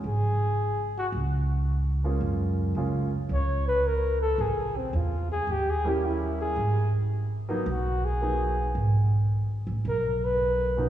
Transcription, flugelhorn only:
X:1
M:4/4
L:1/16
Q:"Swing" 1/4=110
K:F#
V:1 name="Flugelhorn"
G6 F2 z8 | z8 c2 B2 A2 =A2 | G2 =C2 E2 G2 (3=G2 ^G2 =G2 =E2 ^G2- | G2 z6 F2 G6 |
z8 A2 B4- B z |]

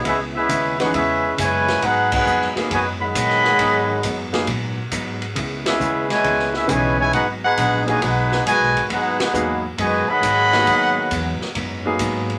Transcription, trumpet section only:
X:1
M:4/4
L:1/8
Q:"Swing" 1/4=136
K:G#m
V:1 name="Trumpet section"
[CGBe] [CGBe]2 [DGBf] [CGBe]2 [EBcg]2 | [DGBf] [DGBf]2 z [FBdg] [Gdfb]3- | [Gdfb]3 z4 z | z [CGBe]2 [EBcg]2 [CGBe] [EBcg] [EBcg] |
[DGBf] [DGBf]2 [FBdg] [DGBf]2 [FBdg]2 | [DGBf] [DGBf]2 z [FBdg] [Gdfb]3- | [Gdfb]3 z4 z |]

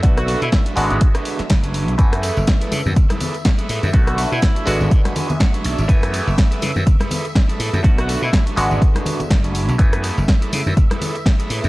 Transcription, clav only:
X:1
M:4/4
L:1/8
Q:"Swing 16ths" 1/4=123
K:F#m
V:1 name="Clav"
[D,A,B,F]3 [D,G,B,F]4- [D,G,B,F] | [E,A,B,g]8 | [D,A,B,F]3 [D,G,B,F]4- [D,G,B,F] | [E,A,B,g]8 |
[D,A,B,F]3 [D,G,B,F]4- [D,G,B,F] | [E,A,B,g]8 |]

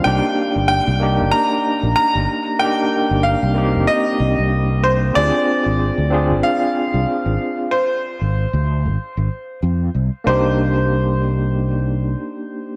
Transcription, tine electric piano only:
X:1
M:4/4
L:1/8
Q:"Swing 16ths" 1/4=94
K:Cm
V:1 name="Tine electric piano"
[B,DEG]3 [B,DEG]4- [B,DEG] | [B,DEG]3 [B,CEG]4- [B,CEG] | [CDFA]3 [CDFA]4- [CDFA] | z8 |
[B,DEG]8 |]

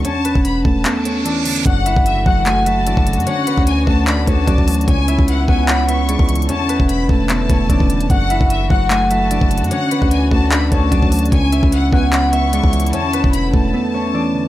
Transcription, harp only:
X:1
M:4/4
L:1/8
Q:1/4=149
K:F#m
V:1 name="Harp"
[Cc] [B,B]3 [A,A] [Cc] [Dd]2 | [Ff] [Ee]2 [Ff]2 [Ee] [Dd] z | [Cc] [B,B]3 [A,A] [Cc] [Dd]2 | [Cc] [Ee]2 [Ff]2 [Ee] [Dd] z |
[Cc] [B,B]3 [A,A] [Cc] [Dd]2 | [Ff] [Ee]2 [Ff]2 [Ee] [Dd] z | [Cc] [B,B]3 [A,A] [Cc] [Dd]2 | [Cc] [Ee]2 [Ff]2 [Ee] [Dd] z |
[Cc] [B,B]3 [A,A] [Cc] [Dd]2 |]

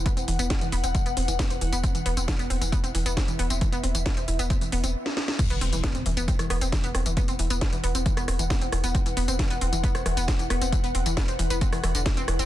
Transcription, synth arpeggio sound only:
X:1
M:4/4
L:1/16
Q:1/4=135
K:Clyd
V:1 name="Synth arpeggio sound"
B, C E, B, C E, B, C E, B, C E, B, C E, B, | C E, B, C E, B, C E, B, C E, B, C E, B, C | E, B, C E, B, C E, B, C E, B, C z4 | E, B, C E, B, C E, B, C E, B, C E, B, C E, |
B, C E, B, C E, B, C E, B, C E, B, C E, B, | C E, B, C E, B, C E, B, C E, B, C E, B, C | E, B, C E, B, C E, B, C E, E, D, E, C E, C |]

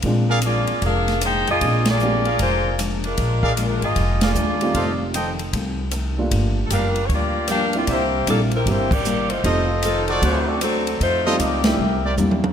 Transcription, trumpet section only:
X:1
M:4/4
L:1/8
Q:"Swing" 1/4=153
K:Bb
V:1 name="Trumpet section"
z [_ABdf] z6 | z3 [_ABdf]3 z2 | z [_ABdf] z3 [ABdf] z2 | [Acef] z [Aceg] z4 z |
z2 [GBdf] z3 [GBdg] z | [GBc=e] z6 z | [FAce]3 [_GAcd]3 z2 | z [FAce] z3 [GBcd] z2 |]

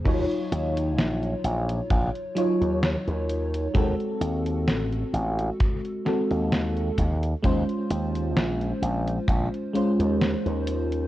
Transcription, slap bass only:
X:1
M:4/4
L:1/16
Q:"Swing 16ths" 1/4=65
K:Ebdor
V:1 name="Slap bass" clef=bass
E,, z E,,2 B,,, z B,,, z B,,, z2 E,, z E,,3 | E,, z E,,2 =A,,, z A,,, z4 E,,3 E,, z | E,, z E,,2 B,,, z B,,, z B,,, z2 E,, z E,,3 |]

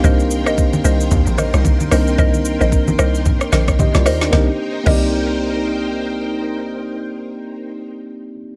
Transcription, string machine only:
X:1
M:4/4
L:1/8
Q:"Swing 16ths" 1/4=112
K:Cm
V:1 name="String machine"
[E,Bgc']8- | [E,Bgc']8 | [EBcg]8- | [EBcg]8 |]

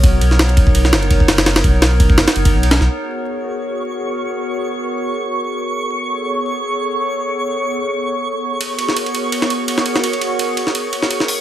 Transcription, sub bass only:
X:1
M:4/4
L:1/16
Q:"Swing 16ths" 1/4=168
K:G#m
V:1 name="Sub bass" clef=bass
B,,,2 B,,,8 F,,,6- | F,,,2 B,,,6 F,,, z F,,,2 B,,,3 B,,, | z16 | z16 |
z16 | z16 | z16 | z16 |]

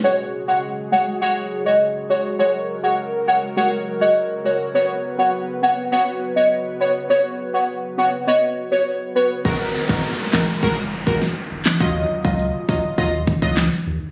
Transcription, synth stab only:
X:1
M:4/4
L:1/16
Q:1/4=102
K:F#
V:1 name="Synth stab"
[G,Fc]3 [G,Fc] z2 [G,Fc] z [G,Fc]3 [G,Fc]3 [G,Fc]2 | [G,Fc]3 [G,Fc] z2 [G,Fc] z [G,Fc]3 [G,Fc]3 [G,Fc]2 | [B,Fc]3 [B,Fc] z2 [B,Fc] z [B,Fc]3 [B,Fc]3 [B,Fc]2 | [B,Fc]3 [B,Fc] z2 [B,Fc] z [B,Fc]3 [B,Fc]3 [B,Fc]2 |
[G,FA]3 [G,FA]3 [G,FA]2 [G,FA] z2 [G,FA] z4 | [F,Ed]3 [F,Ed]3 [F,Ed]2 [F,Ed] z2 [F,Ed] z4 |]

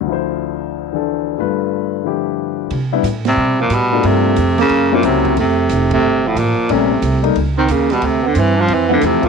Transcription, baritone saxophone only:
X:1
M:4/4
L:1/8
Q:"Swing" 1/4=181
K:C
V:1 name="Baritone saxophone" clef=bass
z8 | z8 | z3 C,2 _B,, =B,,2 | C,3 _D,2 ^A,, ^B,,2 |
C,3 C,2 A,, _B,,2 | C,3 z2 _E, _D, B,, | C, D, E, F, E, D, C, z |]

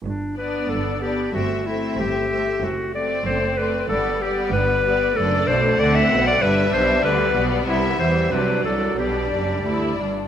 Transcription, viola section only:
X:1
M:2/4
L:1/8
Q:1/4=94
K:G
V:1 name="Viola section"
z B,2 B, | A, A,2 A, | z A,2 A, | G, G,2 G, |
A,4 | G,4 | G,2 F,2 | G,3 z |]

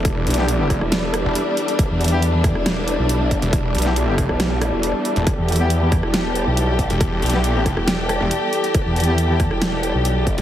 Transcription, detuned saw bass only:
X:1
M:4/4
L:1/16
Q:1/4=138
K:Em
V:1 name="Detuned saw bass" clef=bass
E,,,2 B,,,4 =F,,, z4 E,,, z4 | z12 z3 E,,,- | E,,,2 B,,,4 =F,,, z8 E,,, | z12 z3 E,,,- |
E,,,2 B,,,4 =F,,, z4 E,,, z4 | z12 z3 E,,, |]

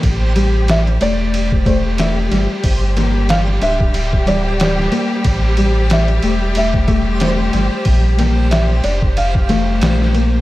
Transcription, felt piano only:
X:1
M:4/4
L:1/16
Q:"Swing 16ths" 1/4=92
K:Aphr
V:1 name="Felt piano"
z4 e2 d4 c2 e3 z | z4 f2 e4 d2 d3 z | z4 e4 e4 c3 z | z4 e2 d2 f4 z4 |]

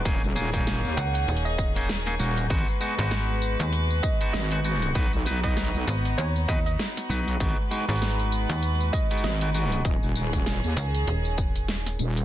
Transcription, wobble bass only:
X:1
M:4/4
L:1/16
Q:"Swing 16ths" 1/4=98
K:G#m
V:1 name="Wobble bass" clef=bass
D,,, D,,,4 D,, z8 D,,,2 | G,,, z8 z3 G,,,4 | B,,, B,,,4 B,,, z8 B,,,2 | G,,, z8 z3 G,,,4 |
D,,, D,,,4 D,, z8 D,,,2 |]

